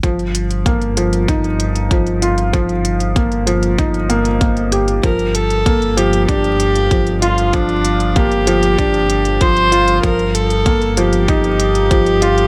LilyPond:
<<
  \new Staff \with { instrumentName = "Viola" } { \time 4/4 \key ees \lydian \tempo 4 = 96 r1 | r1 | bes'8 a'4 g'8 g'4. f'8 | d'4 g'2 c''4 |
bes'8 a'4 g'2~ g'8 | }
  \new Staff \with { instrumentName = "Felt piano" } { \time 4/4 \key ees \lydian f8 r8 bes8 f8 ees'8 r8 f8 f'8 | f8 r8 bes8 f8 ees'8 bes8 bes8 g'8 | f8 r8 bes8 f8 d'8 r8 f8 f'8 | f8 r8 bes8 f8 d'8 r8 f8 f'8 |
f8 r8 bes8 f8 ees'8 r8 f8 f'8 | }
  \new Staff \with { instrumentName = "Analog synth bass" } { \clef bass \time 4/4 \key ees \lydian g,,1~ | g,,1 | g,,1~ | g,,1 |
g,,1 | }
  \new DrumStaff \with { instrumentName = "Drums" } \drummode { \time 4/4 <hh bd>16 hh16 hh16 hh16 <hh bd>16 hh16 hh16 hh16 <hh bd>16 hh16 hh16 hh16 <hh bd>16 hh16 hh16 hh16 | <hh bd>16 hh16 hh16 hh16 <hh bd>16 hh16 hh16 hh16 <hh bd>16 hh16 hh16 hh16 <hh bd>16 hh16 hh16 hh16 | <hh bd>16 hh16 hh16 hh16 <hh bd>16 hh16 hh16 hh16 <hh bd>16 hh16 hh16 hh16 <hh bd>16 hh16 hh16 hh16 | <hh bd>16 hh16 hh16 hh16 <hh bd>16 hh16 hh16 hh16 <hh bd>16 hh16 hh16 hh16 <hh bd>16 hh16 hh16 hh16 |
<hh bd>16 hh16 hh16 hh16 <hh bd>16 hh16 hh16 hh16 <hh bd>16 hh16 hh16 hh16 <hh bd>16 hh16 hh16 hh16 | }
>>